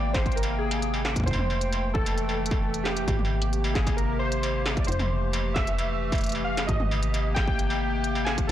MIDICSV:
0, 0, Header, 1, 6, 480
1, 0, Start_track
1, 0, Tempo, 451128
1, 1356, Time_signature, 4, 2, 24, 8
1, 9061, End_track
2, 0, Start_track
2, 0, Title_t, "Synth keys"
2, 0, Program_c, 0, 88
2, 0, Note_on_c, 0, 74, 110
2, 142, Note_on_c, 0, 72, 101
2, 177, Note_off_c, 0, 74, 0
2, 381, Note_on_c, 0, 70, 92
2, 396, Note_off_c, 0, 72, 0
2, 623, Note_on_c, 0, 68, 83
2, 636, Note_off_c, 0, 70, 0
2, 1075, Note_off_c, 0, 68, 0
2, 1342, Note_on_c, 0, 72, 111
2, 2026, Note_off_c, 0, 72, 0
2, 2061, Note_on_c, 0, 69, 112
2, 3020, Note_on_c, 0, 67, 95
2, 3057, Note_off_c, 0, 69, 0
2, 3978, Note_on_c, 0, 68, 89
2, 4016, Note_off_c, 0, 67, 0
2, 4220, Note_on_c, 0, 70, 91
2, 4234, Note_off_c, 0, 68, 0
2, 4460, Note_on_c, 0, 72, 94
2, 4475, Note_off_c, 0, 70, 0
2, 4914, Note_off_c, 0, 72, 0
2, 5105, Note_on_c, 0, 74, 66
2, 5179, Note_on_c, 0, 72, 89
2, 5188, Note_off_c, 0, 74, 0
2, 5897, Note_on_c, 0, 76, 103
2, 5929, Note_off_c, 0, 72, 0
2, 6823, Note_off_c, 0, 76, 0
2, 6856, Note_on_c, 0, 77, 102
2, 7088, Note_off_c, 0, 77, 0
2, 7096, Note_on_c, 0, 75, 102
2, 7816, Note_on_c, 0, 79, 114
2, 7848, Note_off_c, 0, 75, 0
2, 8776, Note_on_c, 0, 80, 106
2, 8814, Note_off_c, 0, 79, 0
2, 8888, Note_off_c, 0, 80, 0
2, 9015, Note_on_c, 0, 69, 102
2, 9061, Note_off_c, 0, 69, 0
2, 9061, End_track
3, 0, Start_track
3, 0, Title_t, "Ambient pad"
3, 0, Program_c, 1, 92
3, 0, Note_on_c, 1, 48, 80
3, 0, Note_on_c, 1, 58, 76
3, 0, Note_on_c, 1, 79, 86
3, 1335, Note_off_c, 1, 48, 0
3, 1335, Note_off_c, 1, 58, 0
3, 1357, Note_on_c, 1, 52, 80
3, 1357, Note_on_c, 1, 57, 75
3, 3232, Note_off_c, 1, 79, 0
3, 3257, Note_off_c, 1, 52, 0
3, 3257, Note_off_c, 1, 57, 0
3, 3275, Note_on_c, 1, 58, 72
3, 3276, Note_on_c, 1, 48, 79
3, 3276, Note_on_c, 1, 67, 85
3, 5176, Note_off_c, 1, 48, 0
3, 5176, Note_off_c, 1, 58, 0
3, 5176, Note_off_c, 1, 67, 0
3, 5195, Note_on_c, 1, 52, 83
3, 5195, Note_on_c, 1, 57, 72
3, 5195, Note_on_c, 1, 67, 88
3, 7096, Note_off_c, 1, 52, 0
3, 7096, Note_off_c, 1, 57, 0
3, 7096, Note_off_c, 1, 67, 0
3, 7111, Note_on_c, 1, 58, 75
3, 7111, Note_on_c, 1, 67, 93
3, 7113, Note_on_c, 1, 48, 83
3, 9014, Note_off_c, 1, 58, 0
3, 9015, Note_off_c, 1, 48, 0
3, 9061, Note_off_c, 1, 67, 0
3, 9061, End_track
4, 0, Start_track
4, 0, Title_t, "FM bass"
4, 0, Program_c, 2, 39
4, 0, Note_on_c, 2, 32, 82
4, 1331, Note_off_c, 2, 32, 0
4, 1354, Note_on_c, 2, 29, 85
4, 3251, Note_off_c, 2, 29, 0
4, 3273, Note_on_c, 2, 32, 85
4, 5170, Note_off_c, 2, 32, 0
4, 5194, Note_on_c, 2, 29, 86
4, 7091, Note_off_c, 2, 29, 0
4, 7114, Note_on_c, 2, 32, 86
4, 9011, Note_off_c, 2, 32, 0
4, 9061, End_track
5, 0, Start_track
5, 0, Title_t, "Struck metal"
5, 157, Note_on_c, 9, 76, 53
5, 263, Note_off_c, 9, 76, 0
5, 458, Note_on_c, 9, 76, 76
5, 564, Note_off_c, 9, 76, 0
5, 758, Note_on_c, 9, 76, 55
5, 864, Note_off_c, 9, 76, 0
5, 997, Note_on_c, 9, 76, 53
5, 1103, Note_off_c, 9, 76, 0
5, 1416, Note_on_c, 9, 76, 80
5, 1522, Note_off_c, 9, 76, 0
5, 1596, Note_on_c, 9, 76, 53
5, 1703, Note_off_c, 9, 76, 0
5, 1836, Note_on_c, 9, 76, 48
5, 1942, Note_off_c, 9, 76, 0
5, 2195, Note_on_c, 9, 76, 79
5, 2302, Note_off_c, 9, 76, 0
5, 2436, Note_on_c, 9, 76, 49
5, 2542, Note_off_c, 9, 76, 0
5, 2675, Note_on_c, 9, 76, 49
5, 2782, Note_off_c, 9, 76, 0
5, 3275, Note_on_c, 9, 76, 50
5, 3382, Note_off_c, 9, 76, 0
5, 3455, Note_on_c, 9, 76, 52
5, 3562, Note_off_c, 9, 76, 0
5, 3875, Note_on_c, 9, 76, 75
5, 3981, Note_off_c, 9, 76, 0
5, 4116, Note_on_c, 9, 76, 49
5, 4223, Note_off_c, 9, 76, 0
5, 4715, Note_on_c, 9, 76, 77
5, 4822, Note_off_c, 9, 76, 0
5, 4954, Note_on_c, 9, 76, 49
5, 5061, Note_off_c, 9, 76, 0
5, 5314, Note_on_c, 9, 76, 52
5, 5420, Note_off_c, 9, 76, 0
5, 5675, Note_on_c, 9, 76, 77
5, 5781, Note_off_c, 9, 76, 0
5, 6155, Note_on_c, 9, 76, 50
5, 6262, Note_off_c, 9, 76, 0
5, 6516, Note_on_c, 9, 76, 74
5, 6622, Note_off_c, 9, 76, 0
5, 6755, Note_on_c, 9, 76, 50
5, 6861, Note_off_c, 9, 76, 0
5, 6995, Note_on_c, 9, 76, 50
5, 7101, Note_off_c, 9, 76, 0
5, 7356, Note_on_c, 9, 76, 80
5, 7463, Note_off_c, 9, 76, 0
5, 7597, Note_on_c, 9, 76, 54
5, 7704, Note_off_c, 9, 76, 0
5, 7837, Note_on_c, 9, 76, 50
5, 7943, Note_off_c, 9, 76, 0
5, 8195, Note_on_c, 9, 76, 77
5, 8301, Note_off_c, 9, 76, 0
5, 8675, Note_on_c, 9, 76, 53
5, 8782, Note_off_c, 9, 76, 0
5, 9061, End_track
6, 0, Start_track
6, 0, Title_t, "Drums"
6, 155, Note_on_c, 9, 36, 121
6, 157, Note_on_c, 9, 38, 120
6, 261, Note_off_c, 9, 36, 0
6, 263, Note_off_c, 9, 38, 0
6, 275, Note_on_c, 9, 36, 87
6, 277, Note_on_c, 9, 42, 32
6, 338, Note_off_c, 9, 42, 0
6, 338, Note_on_c, 9, 42, 39
6, 381, Note_off_c, 9, 36, 0
6, 398, Note_off_c, 9, 42, 0
6, 398, Note_on_c, 9, 42, 55
6, 458, Note_off_c, 9, 42, 0
6, 458, Note_on_c, 9, 42, 56
6, 564, Note_off_c, 9, 42, 0
6, 758, Note_on_c, 9, 42, 68
6, 864, Note_off_c, 9, 42, 0
6, 877, Note_on_c, 9, 42, 57
6, 983, Note_off_c, 9, 42, 0
6, 1116, Note_on_c, 9, 38, 126
6, 1222, Note_off_c, 9, 38, 0
6, 1235, Note_on_c, 9, 36, 80
6, 1237, Note_on_c, 9, 42, 68
6, 1275, Note_off_c, 9, 36, 0
6, 1275, Note_on_c, 9, 36, 67
6, 1314, Note_off_c, 9, 36, 0
6, 1314, Note_on_c, 9, 36, 55
6, 1344, Note_off_c, 9, 42, 0
6, 1354, Note_off_c, 9, 36, 0
6, 1354, Note_on_c, 9, 36, 47
6, 1357, Note_on_c, 9, 42, 57
6, 1394, Note_off_c, 9, 36, 0
6, 1394, Note_on_c, 9, 36, 38
6, 1434, Note_off_c, 9, 36, 0
6, 1434, Note_on_c, 9, 36, 31
6, 1463, Note_off_c, 9, 42, 0
6, 1476, Note_on_c, 9, 45, 90
6, 1541, Note_off_c, 9, 36, 0
6, 1582, Note_off_c, 9, 45, 0
6, 1716, Note_on_c, 9, 42, 64
6, 1823, Note_off_c, 9, 42, 0
6, 1836, Note_on_c, 9, 42, 53
6, 1942, Note_off_c, 9, 42, 0
6, 2074, Note_on_c, 9, 36, 125
6, 2180, Note_off_c, 9, 36, 0
6, 2195, Note_on_c, 9, 42, 68
6, 2302, Note_off_c, 9, 42, 0
6, 2315, Note_on_c, 9, 42, 52
6, 2422, Note_off_c, 9, 42, 0
6, 2615, Note_on_c, 9, 42, 69
6, 2673, Note_on_c, 9, 36, 120
6, 2721, Note_off_c, 9, 42, 0
6, 2780, Note_off_c, 9, 36, 0
6, 2916, Note_on_c, 9, 42, 58
6, 3022, Note_off_c, 9, 42, 0
6, 3036, Note_on_c, 9, 38, 122
6, 3143, Note_off_c, 9, 38, 0
6, 3156, Note_on_c, 9, 42, 64
6, 3262, Note_off_c, 9, 42, 0
6, 3273, Note_on_c, 9, 36, 89
6, 3275, Note_on_c, 9, 42, 55
6, 3380, Note_off_c, 9, 36, 0
6, 3382, Note_off_c, 9, 42, 0
6, 3395, Note_on_c, 9, 45, 90
6, 3501, Note_off_c, 9, 45, 0
6, 3635, Note_on_c, 9, 42, 60
6, 3742, Note_off_c, 9, 42, 0
6, 3755, Note_on_c, 9, 42, 52
6, 3861, Note_off_c, 9, 42, 0
6, 3994, Note_on_c, 9, 36, 127
6, 3995, Note_on_c, 9, 38, 122
6, 4100, Note_off_c, 9, 36, 0
6, 4102, Note_off_c, 9, 38, 0
6, 4114, Note_on_c, 9, 36, 85
6, 4116, Note_on_c, 9, 42, 65
6, 4220, Note_off_c, 9, 36, 0
6, 4223, Note_off_c, 9, 42, 0
6, 4236, Note_on_c, 9, 42, 49
6, 4342, Note_off_c, 9, 42, 0
6, 4595, Note_on_c, 9, 42, 63
6, 4702, Note_off_c, 9, 42, 0
6, 4715, Note_on_c, 9, 42, 52
6, 4822, Note_off_c, 9, 42, 0
6, 4954, Note_on_c, 9, 38, 127
6, 5061, Note_off_c, 9, 38, 0
6, 5074, Note_on_c, 9, 36, 82
6, 5075, Note_on_c, 9, 42, 29
6, 5155, Note_off_c, 9, 42, 0
6, 5155, Note_on_c, 9, 42, 39
6, 5181, Note_off_c, 9, 36, 0
6, 5194, Note_off_c, 9, 42, 0
6, 5194, Note_on_c, 9, 42, 54
6, 5234, Note_off_c, 9, 42, 0
6, 5234, Note_on_c, 9, 42, 52
6, 5314, Note_on_c, 9, 45, 94
6, 5341, Note_off_c, 9, 42, 0
6, 5420, Note_off_c, 9, 45, 0
6, 5675, Note_on_c, 9, 42, 49
6, 5781, Note_off_c, 9, 42, 0
6, 5914, Note_on_c, 9, 36, 123
6, 5915, Note_on_c, 9, 38, 118
6, 6021, Note_off_c, 9, 36, 0
6, 6021, Note_off_c, 9, 38, 0
6, 6036, Note_on_c, 9, 42, 64
6, 6142, Note_off_c, 9, 42, 0
6, 6155, Note_on_c, 9, 42, 50
6, 6262, Note_off_c, 9, 42, 0
6, 6514, Note_on_c, 9, 36, 115
6, 6516, Note_on_c, 9, 42, 29
6, 6545, Note_off_c, 9, 42, 0
6, 6545, Note_on_c, 9, 42, 32
6, 6575, Note_off_c, 9, 42, 0
6, 6575, Note_on_c, 9, 42, 37
6, 6605, Note_off_c, 9, 42, 0
6, 6605, Note_on_c, 9, 42, 40
6, 6621, Note_off_c, 9, 36, 0
6, 6636, Note_off_c, 9, 42, 0
6, 6636, Note_on_c, 9, 42, 52
6, 6665, Note_off_c, 9, 42, 0
6, 6665, Note_on_c, 9, 42, 50
6, 6695, Note_off_c, 9, 42, 0
6, 6695, Note_on_c, 9, 42, 53
6, 6724, Note_off_c, 9, 42, 0
6, 6724, Note_on_c, 9, 42, 56
6, 6831, Note_off_c, 9, 42, 0
6, 6995, Note_on_c, 9, 38, 114
6, 6995, Note_on_c, 9, 42, 62
6, 7101, Note_off_c, 9, 38, 0
6, 7101, Note_off_c, 9, 42, 0
6, 7115, Note_on_c, 9, 36, 81
6, 7115, Note_on_c, 9, 42, 53
6, 7221, Note_off_c, 9, 36, 0
6, 7221, Note_off_c, 9, 42, 0
6, 7234, Note_on_c, 9, 45, 96
6, 7341, Note_off_c, 9, 45, 0
6, 7476, Note_on_c, 9, 42, 60
6, 7582, Note_off_c, 9, 42, 0
6, 7597, Note_on_c, 9, 42, 50
6, 7704, Note_off_c, 9, 42, 0
6, 7834, Note_on_c, 9, 36, 113
6, 7837, Note_on_c, 9, 38, 116
6, 7941, Note_off_c, 9, 36, 0
6, 7943, Note_off_c, 9, 38, 0
6, 7954, Note_on_c, 9, 36, 84
6, 8061, Note_off_c, 9, 36, 0
6, 8076, Note_on_c, 9, 42, 48
6, 8183, Note_off_c, 9, 42, 0
6, 8555, Note_on_c, 9, 42, 52
6, 8662, Note_off_c, 9, 42, 0
6, 8795, Note_on_c, 9, 38, 118
6, 8901, Note_off_c, 9, 38, 0
6, 8914, Note_on_c, 9, 36, 77
6, 8915, Note_on_c, 9, 42, 63
6, 9021, Note_off_c, 9, 36, 0
6, 9021, Note_off_c, 9, 42, 0
6, 9061, End_track
0, 0, End_of_file